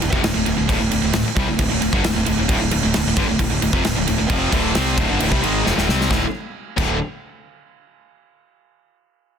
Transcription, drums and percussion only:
0.02 crash
0.13 kick
0.24 snare, crash
0.46 crash
0.69 kick, crash
0.91 crash
1.13 snare, crash
1.37 kick, crash
1.59 kick, crash
1.82 crash
1.93 kick
2.04 snare, crash
2.26 crash
2.49 kick, crash
2.71 crash
2.94 snare, crash
3.17 kick, crash
3.39 kick, crash
3.62 crash
3.73 kick
3.85 snare, crash
4.07 crash
4.30 kick, crash
4.52 kick, crash
4.75 snare, crash
4.98 kick, crash
5.20 crash
5.32 kick
5.44 crash
5.66 snare
5.78 snare
5.89 snare
6.01 snare
6.11 kick, snare
6.78 kick, crash

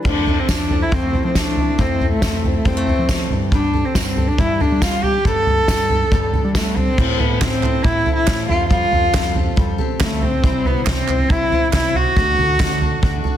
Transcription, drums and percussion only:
0.05 kick, floor tom, crash
0.27 floor tom
0.49 kick, snare, floor tom, tambourine
0.70 floor tom
0.92 kick, floor tom
1.13 floor tom
1.35 kick, snare, floor tom, tambourine
1.57 floor tom
1.78 kick, floor tom
2.00 floor tom
2.22 kick, snare, floor tom, tambourine
2.44 floor tom
2.65 kick, floor tom
2.87 floor tom
3.09 kick, snare, floor tom, tambourine
3.30 floor tom
3.52 kick, floor tom
3.73 floor tom
3.95 kick, snare, floor tom, tambourine
4.17 floor tom
4.38 kick, floor tom
4.60 floor tom
4.82 kick, snare, floor tom, tambourine
5.03 floor tom
5.25 kick, floor tom
5.47 floor tom
5.68 kick, snare, floor tom, tambourine
5.90 floor tom
6.12 kick, floor tom
6.33 floor tom
6.55 kick, snare, floor tom, tambourine
6.77 floor tom
6.98 kick, floor tom, crash
7.20 floor tom
7.41 kick, snare, clap, floor tom
7.63 clap, floor tom
7.84 kick, floor tom
8.06 floor tom
8.27 kick, snare, clap, floor tom
8.49 floor tom
8.70 kick, floor tom
8.92 floor tom
9.14 kick, snare, clap, floor tom
9.36 floor tom
9.57 kick, floor tom
9.79 floor tom
10.00 kick, snare, clap, floor tom
10.22 floor tom
10.44 kick, floor tom
10.65 floor tom
10.87 kick, snare, clap, floor tom
11.08 clap, floor tom
11.30 kick, floor tom
11.52 floor tom
11.73 kick, snare, clap, floor tom
11.95 floor tom
12.17 kick, floor tom
12.39 floor tom
12.60 kick, snare, clap, floor tom
12.82 floor tom
13.03 kick, floor tom
13.25 floor tom

